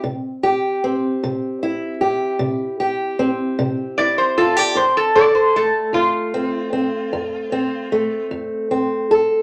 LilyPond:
<<
  \new Staff \with { instrumentName = "Resonator guitar played with a steel bar" } { \time 12/8 \key f \major \tempo 4. = 51 r1 r4 d''16 c''16 a'16 d''16 | c''16 a'16 d''16 c''16 a'8 f'2. r4. | }
  \new Staff \with { instrumentName = "Steel-string acoustic guitar" } { \time 12/8 \key f \major << { r8 g'8 c'4 e'8 g'4 g'8 c'4 e'8 f'16 g'16 | r8 a'8 a4 c'8 c'4 c'8 a4 c'8 a'8 | } \\ { c4 r8 c4 r8 c4 r8 c4 r8 | f,4 r8 f,4 r8 f,4 r8 f,4 r8 | } >> }
>>